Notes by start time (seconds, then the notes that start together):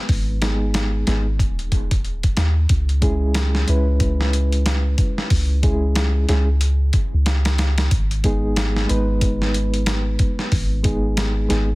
Already playing: G#3 B3 D#4 B4
0.09 G#1, kick, open hi-hat
0.42 G#3 B3 D#4 G#4, snare, closed hi-hat
0.74 snare, closed hi-hat
1.07 G#1 G#3 B3 D#4 G#4, snare, closed hi-hat
1.39 D#1, kick, closed hi-hat
1.59 closed hi-hat
1.72 kick, closed hi-hat
1.91 kick, closed hi-hat
2.05 closed hi-hat
2.23 kick, closed hi-hat
2.37 D#2, snare, closed hi-hat
2.69 C#2, kick, closed hi-hat
2.89 closed hi-hat
3.01 G#3 C#4 E4 G#4, kick, closed hi-hat
3.34 snare, closed hi-hat
3.55 snare
3.67 C#2 G#3 C#4 E4 B4, closed hi-hat
4.00 kick, closed hi-hat
4.21 snare
4.33 closed hi-hat
4.52 closed hi-hat
4.66 snare, closed hi-hat
4.98 kick, closed hi-hat
5.18 snare
5.30 C#2, kick, open hi-hat
5.63 G#3 C#4 E4 G#4, kick, closed hi-hat
5.95 snare, closed hi-hat
6.28 C#2 G#3 C#4 E4 G#4, snare, closed hi-hat
6.61 closed hi-hat
6.93 kick, closed hi-hat
7.14 C#2
7.26 snare, closed hi-hat
7.45 snare, closed hi-hat
7.58 snare, closed hi-hat
7.78 snare, closed hi-hat
7.91 G#1, kick, closed hi-hat
8.11 closed hi-hat
8.24 G#3 B3 D#4 G#4, kick, closed hi-hat
8.56 snare, closed hi-hat
8.76 snare
8.86 G#1 G#3 B3 D#4 B4, closed hi-hat
9.21 kick, closed hi-hat
9.42 snare
9.54 closed hi-hat
9.74 closed hi-hat
9.86 snare, closed hi-hat
10.19 kick, closed hi-hat
10.39 snare
10.52 G#1, kick, open hi-hat
10.83 G#3 B3 D#4 G#4, kick, closed hi-hat
11.17 snare, closed hi-hat
11.49 G#1 G#3 B3 D#4 G#4, snare, closed hi-hat